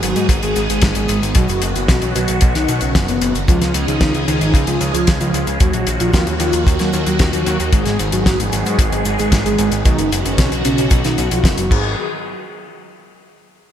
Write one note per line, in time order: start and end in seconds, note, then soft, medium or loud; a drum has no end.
0.00 0.15 G#1 loud
0.00 3.44 D#3 medium
0.00 0.28 F#3 medium
0.00 1.33 G#3 medium
0.00 3.44 B3 medium
0.00 0.28 F#4 loud
0.00 1.33 G#4 medium
0.00 closed hi-hat medium
0.00 cabasa medium
0.16 0.28 G#2 medium
0.16 closed hi-hat medium
0.16 cabasa medium
0.29 0.41 G#1 loud
0.29 kick loud
0.29 closed hi-hat loud
0.29 cabasa medium
0.43 0.55 G#1 medium
0.43 0.59 G#3 medium
0.43 0.59 G#4 medium
0.43 closed hi-hat medium
0.56 0.68 G#1 loud
0.56 closed hi-hat medium
0.56 cabasa medium
0.69 0.81 G#1 medium
0.69 0.86 G#3 medium
0.69 0.86 G#4 medium
0.69 closed hi-hat medium
0.69 cabasa soft
0.82 0.94 G#1 loud
0.82 kick loud
0.82 snare loud
0.82 closed hi-hat loud
0.82 cabasa medium
0.95 1.08 G#1 medium
0.95 1.21 G#3 medium
0.95 1.21 G#4 loud
0.95 closed hi-hat medium
0.95 cabasa medium
1.08 1.21 G#1 loud
1.08 closed hi-hat medium
1.08 cabasa medium
1.22 1.34 G#1 medium
1.22 closed hi-hat medium
1.22 cabasa soft
1.35 1.47 B1 loud
1.35 3.46 F#3 medium
1.35 1.60 F#3 medium
1.35 3.46 F#4 medium
1.35 1.60 F#4 loud
1.35 kick loud
1.35 closed hi-hat loud
1.35 cabasa medium
1.48 1.61 F#1 medium
1.48 closed hi-hat medium
1.48 cabasa soft
1.62 1.74 F#1 loud
1.62 closed hi-hat medium
1.62 cabasa medium
1.76 1.87 F#1 medium
1.76 2.00 F#3 medium
1.76 2.00 F#4 loud
1.76 closed hi-hat medium
1.76 cabasa soft
1.88 2.01 B1 loud
1.88 kick loud
1.88 snare loud
1.88 closed hi-hat loud
1.88 cabasa medium
2.02 2.14 B1 medium
2.02 closed hi-hat medium
2.15 2.27 B1 loud
2.15 2.40 F#3 medium
2.15 2.40 F#4 loud
2.15 closed hi-hat medium
2.15 cabasa medium
2.28 2.41 B1 medium
2.28 closed hi-hat medium
2.28 cabasa soft
2.41 2.54 B1 loud
2.41 kick loud
2.41 closed hi-hat loud
2.41 cabasa medium
2.55 2.67 B1 medium
2.55 2.72 D#3 medium
2.55 2.72 D#4 medium
2.55 snare soft
2.55 closed hi-hat medium
2.68 2.80 B1 loud
2.68 closed hi-hat medium
2.68 cabasa medium
2.81 2.94 B1 medium
2.81 2.98 C#3 medium
2.81 2.98 C#4 medium
2.81 closed hi-hat medium
2.81 cabasa soft
2.95 3.07 F#1 loud
2.95 kick loud
2.95 snare loud
2.95 closed hi-hat loud
2.95 cabasa medium
3.08 3.20 F#1 medium
3.08 3.33 B2 medium
3.08 3.33 B3 loud
3.08 closed hi-hat medium
3.08 cabasa soft
3.21 3.33 F#1 loud
3.21 closed hi-hat medium
3.21 cabasa medium
3.35 3.47 F#1 medium
3.35 closed hi-hat medium
3.35 cabasa soft
3.48 3.60 C#2 loud
3.48 5.58 F3 medium
3.48 3.73 F3 medium
3.48 5.58 G#3 medium
3.48 5.58 C#4 medium
3.48 3.73 F4 loud
3.48 5.58 G#4 medium
3.48 kick loud
3.48 closed hi-hat medium
3.48 cabasa medium
3.61 3.73 C#2 medium
3.61 snare soft
3.61 closed hi-hat medium
3.74 3.86 C#2 medium
3.74 closed hi-hat medium
3.74 cabasa medium
3.88 4.00 C#2 medium
3.88 4.13 D#3 medium
3.88 4.13 D#4 loud
3.88 closed hi-hat medium
3.88 cabasa soft
4.01 4.13 C#2 loud
4.01 kick loud
4.01 snare loud
4.01 closed hi-hat medium
4.01 cabasa medium
4.14 4.26 C#2 medium
4.14 closed hi-hat medium
4.27 4.40 C#2 medium
4.27 4.52 D#3 medium
4.27 4.52 D#4 loud
4.27 closed hi-hat medium
4.27 cabasa medium
4.41 4.53 G#1 medium
4.41 closed hi-hat medium
4.41 cabasa medium
4.54 4.66 C#2 loud
4.54 kick loud
4.54 closed hi-hat medium
4.54 cabasa medium
4.67 4.79 C#2 medium
4.67 4.84 F3 medium
4.67 4.84 F4 medium
4.67 closed hi-hat medium
4.81 4.93 C#2 loud
4.81 closed hi-hat medium
4.81 cabasa medium
4.94 5.06 C#2 medium
4.94 5.10 F3 medium
4.94 5.10 F4 medium
4.94 closed hi-hat medium
4.94 cabasa soft
5.07 5.19 C#2 loud
5.07 kick loud
5.07 snare loud
5.07 closed hi-hat loud
5.07 cabasa medium
5.20 5.32 C#2 medium
5.20 5.45 F3 medium
5.20 5.45 F4 loud
5.20 closed hi-hat medium
5.20 cabasa soft
5.34 5.46 C#2 loud
5.34 closed hi-hat medium
5.34 cabasa medium
5.47 5.59 C#2 medium
5.47 closed hi-hat medium
5.47 cabasa soft
5.60 5.72 D#2 loud
5.60 11.67 D#3 medium
5.60 7.71 F#3 medium
5.60 5.85 F#3 medium
5.60 7.71 A#3 medium
5.60 7.71 F#4 medium
5.60 5.85 F#4 loud
5.60 kick loud
5.60 closed hi-hat loud
5.60 cabasa soft
5.73 5.86 A#1 medium
5.73 closed hi-hat medium
5.87 5.99 A#1 medium
5.87 closed hi-hat medium
5.87 cabasa medium
6.00 6.12 A#1 medium
6.00 6.25 F3 medium
6.00 6.25 F4 loud
6.00 closed hi-hat medium
6.00 cabasa soft
6.13 6.25 D#2 loud
6.13 kick loud
6.13 snare loud
6.13 closed hi-hat loud
6.13 cabasa medium
6.27 6.39 D#2 medium
6.27 closed hi-hat medium
6.40 6.52 D#2 loud
6.40 6.65 F3 medium
6.40 6.65 F4 loud
6.40 closed hi-hat medium
6.40 cabasa medium
6.52 6.65 D#2 medium
6.52 closed hi-hat medium
6.52 cabasa soft
6.67 6.79 D#2 loud
6.67 kick loud
6.67 closed hi-hat loud
6.67 cabasa medium
6.79 6.92 D#2 medium
6.79 6.96 F#3 medium
6.79 6.97 F#4 medium
6.79 snare soft
6.79 closed hi-hat medium
6.93 7.05 D#2 loud
6.93 closed hi-hat medium
6.93 cabasa medium
7.06 7.18 D#2 medium
7.06 7.23 F#3 medium
7.06 7.23 F#4 medium
7.06 closed hi-hat medium
7.06 cabasa soft
7.19 7.32 D#2 loud
7.19 kick loud
7.19 snare loud
7.19 closed hi-hat medium
7.19 cabasa medium
7.33 7.45 D#2 medium
7.33 7.58 F#3 medium
7.33 7.58 F#4 loud
7.33 closed hi-hat medium
7.33 cabasa soft
7.46 7.58 D#2 loud
7.46 closed hi-hat medium
7.46 cabasa medium
7.60 7.72 D#2 medium
7.60 closed hi-hat soft
7.60 cabasa soft
7.73 7.85 G#1 loud
7.73 9.83 G#3 medium
7.73 7.98 G#3 medium
7.73 11.67 B3 medium
7.73 9.83 G#4 medium
7.73 7.98 G#4 loud
7.73 kick loud
7.73 closed hi-hat loud
7.73 cabasa medium
7.86 7.98 G#1 medium
7.86 snare soft
7.86 closed hi-hat medium
7.99 8.11 G#1 medium
7.99 closed hi-hat medium
7.99 cabasa medium
8.12 8.25 G#1 medium
8.12 8.37 F#3 medium
8.12 8.37 F#4 loud
8.12 closed hi-hat medium
8.12 cabasa soft
8.26 8.38 G#1 loud
8.26 kick loud
8.26 snare loud
8.26 closed hi-hat medium
8.26 cabasa medium
8.39 8.51 G#1 medium
8.39 closed hi-hat medium
8.52 8.64 G#1 loud
8.52 8.77 F#3 medium
8.52 8.77 F#4 loud
8.52 closed hi-hat medium
8.52 cabasa medium
8.66 8.78 G#2 medium
8.66 closed hi-hat medium
8.66 cabasa soft
8.79 8.91 G#1 loud
8.79 kick loud
8.79 closed hi-hat loud
8.79 cabasa medium
8.92 9.04 G#1 medium
8.92 9.09 G#3 medium
8.92 9.09 G#4 medium
8.92 closed hi-hat medium
9.05 9.17 G#1 medium
9.05 closed hi-hat medium
9.05 cabasa medium
9.19 9.31 G#1 medium
9.19 9.35 G#3 medium
9.19 9.35 G#4 medium
9.19 closed hi-hat medium
9.19 cabasa soft
9.32 9.44 G#1 loud
9.32 kick loud
9.32 snare loud
9.32 closed hi-hat loud
9.32 cabasa medium
9.45 9.57 G#1 medium
9.45 9.70 G#3 medium
9.45 9.70 G#4 loud
9.45 closed hi-hat medium
9.45 cabasa soft
9.58 9.71 G#1 loud
9.58 closed hi-hat medium
9.58 cabasa medium
9.72 9.84 G#1 medium
9.72 closed hi-hat medium
9.72 cabasa soft
9.85 9.97 B1 loud
9.85 10.10 D#3 medium
9.85 11.69 F#3 medium
9.85 10.10 D#4 loud
9.85 11.69 F#4 medium
9.85 kick loud
9.85 closed hi-hat loud
9.85 cabasa medium
9.98 10.10 F#1 medium
9.98 closed hi-hat medium
10.12 10.24 F#1 medium
10.12 closed hi-hat medium
10.12 cabasa medium
10.25 10.37 F#1 medium
10.25 10.50 C#3 medium
10.25 10.50 C#4 loud
10.25 closed hi-hat medium
10.25 cabasa medium
10.38 10.50 B1 loud
10.38 kick loud
10.38 snare loud
10.38 closed hi-hat loud
10.38 cabasa medium
10.52 10.64 B1 medium
10.52 closed hi-hat medium
10.65 10.77 B1 loud
10.65 10.90 C#3 medium
10.65 10.90 C#4 loud
10.65 closed hi-hat medium
10.65 cabasa medium
10.78 10.90 B1 medium
10.78 closed hi-hat medium
10.78 cabasa medium
10.90 11.03 B1 loud
10.90 kick loud
10.90 closed hi-hat loud
10.90 cabasa medium
11.04 11.17 B1 medium
11.04 11.21 D#3 medium
11.04 11.21 D#4 medium
11.04 snare soft
11.04 closed hi-hat medium
11.04 cabasa soft
11.18 11.30 B1 loud
11.18 closed hi-hat medium
11.18 cabasa medium
11.31 11.43 B1 medium
11.31 11.48 F3 medium
11.31 11.48 F4 medium
11.31 closed hi-hat medium
11.31 cabasa soft
11.44 11.56 F#1 loud
11.44 kick loud
11.44 snare loud
11.44 closed hi-hat loud
11.44 cabasa medium
11.58 11.70 F#1 medium
11.58 11.71 F#3 medium
11.58 11.71 F#4 loud
11.58 closed hi-hat medium
11.58 cabasa medium
11.71 11.96 G#1 loud
11.71 11.96 D#3 medium
11.71 11.96 G#3 medium
11.71 11.96 B3 medium
11.71 11.91 G#4 loud
11.71 11.96 G#4 medium
11.71 kick loud
11.71 crash medium